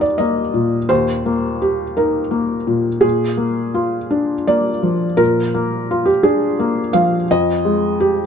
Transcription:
0.00 0.87 D#2 medium
0.00 0.19 A#3 soft
0.00 0.40 D#4 soft
0.00 0.92 G4 soft
0.00 0.92 A#4 medium
0.00 0.19 D5 medium
0.18 0.76 A#3 soft
0.18 0.89 D#5 medium
0.54 1.11 A#2 soft
0.89 3.00 D#2 medium
0.89 1.97 C5 medium
1.26 1.83 A#3 soft
1.62 2.19 G4 soft
1.97 2.55 D#4 soft
1.97 3.04 A#4 medium
2.31 2.89 A#3 soft
2.67 3.00 A#2 soft
3.01 5.14 A#2 medium
3.01 4.47 G#4 medium
3.37 3.96 A#3 soft
3.74 4.34 F4 soft
4.11 4.69 D4 soft
4.47 5.05 A#3 soft
4.47 5.19 D5 medium
4.83 5.40 F3 soft
5.17 7.23 A#2 medium
5.17 6.05 A#4 medium
5.54 6.10 A#3 soft
5.91 6.46 F4 soft
6.05 6.23 G4 medium
6.23 6.79 D4 soft
6.23 6.93 G#4 medium
6.59 7.15 A#3 soft
6.93 7.29 F3 soft
6.93 7.28 F5 medium
7.31 8.26 F2 medium
7.31 8.26 D#5 medium
7.65 8.20 G#3 soft
8.00 8.26 G4 medium

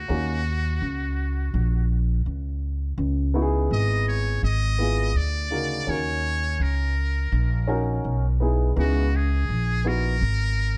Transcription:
0.00 1.87 F#4 medium
0.08 0.78 D#2 loud
0.08 0.37 A#3 medium
0.08 0.37 C#4 medium
0.08 0.38 D#4 medium
0.08 0.38 F#4 medium
0.81 1.50 C#2 medium
1.54 2.23 A#1 medium
2.26 2.95 C#2 medium
2.98 3.67 C#2 loud
3.34 4.37 B3 medium
3.34 4.38 D#4 medium
3.34 4.38 E4 medium
3.34 3.43 F#4 medium
3.42 4.41 G#4 medium
3.71 4.39 G#1 medium
3.71 4.05 D#5 loud
4.08 4.41 C#5 loud
4.43 5.12 G#1 medium
4.43 5.18 D#5 loud
4.78 5.07 B3 medium
4.78 5.07 E4 medium
4.78 5.08 F4 medium
4.78 5.08 G#4 medium
5.15 5.84 D2 medium
5.15 5.91 D5 loud
5.51 5.96 C#3 medium
5.51 5.86 D#4 medium
5.51 5.87 F#4 medium
5.51 5.87 A#4 medium
5.87 6.56 D#2 medium
5.87 6.90 C#4 medium
5.87 6.91 D#4 medium
5.87 6.91 F#4 medium
5.87 6.91 A#4 medium
5.87 6.63 C#5 loud
6.60 7.28 C#2 medium
6.60 8.06 A#4 medium
7.32 8.01 A#1 medium
7.67 8.22 C#4 medium
7.67 8.23 D#4 medium
7.67 8.23 F#4 medium
7.67 8.23 A#4 medium
8.04 8.73 B1 medium
8.40 8.69 B3 medium
8.40 8.69 D#4 medium
8.40 8.69 E4 medium
8.40 8.70 G#4 medium
8.76 9.45 C#2 loud
8.76 9.05 B3 medium
8.76 9.05 D#4 medium
8.76 9.05 E4 medium
8.76 9.17 F#4 medium
8.76 9.05 G#4 medium
9.16 9.89 G#4 medium
9.49 10.18 A#1 medium
9.84 10.13 B3 medium
9.84 10.13 D#4 medium
9.84 10.13 E4 medium
9.84 10.14 F#4 medium
9.84 10.78 A#4 loud
10.21 10.78 G#1 medium

